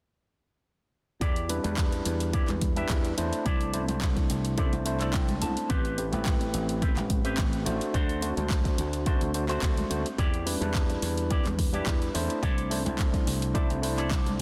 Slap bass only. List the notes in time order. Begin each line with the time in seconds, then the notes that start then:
1.21 E2
1.65 E2
2.06 E2
2.49 E2
2.90 E2
3.18 E2
3.46 C2
3.89 C2
4.30 C2
4.73 C2
5.14 C2
5.42 C2
5.70 A1
6.13 A1
6.54 A1
6.96 A1
7.38 A1
7.66 A1
7.94 D2
8.37 D2
8.78 D2
9.21 D2
9.62 D2
9.90 D2
10.18 E2
10.61 E2
11.02 E2
11.45 E2
11.87 E2
12.15 E2
12.43 C2
12.86 C2
13.27 C2
13.70 C2
14.11 C2